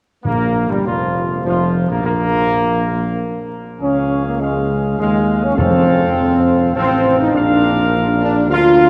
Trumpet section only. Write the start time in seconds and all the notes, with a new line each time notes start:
0.25 A#3
0.70 G3
0.86 F4
1.47 F4
1.91 A#3
2.05 A#3
3.81 G#4 F5
4.40 G#4 F5
4.99 G#4 F5
5.58 A4 F5
6.75 A4 F5
7.34 A#4 F5
8.50 A#4 F5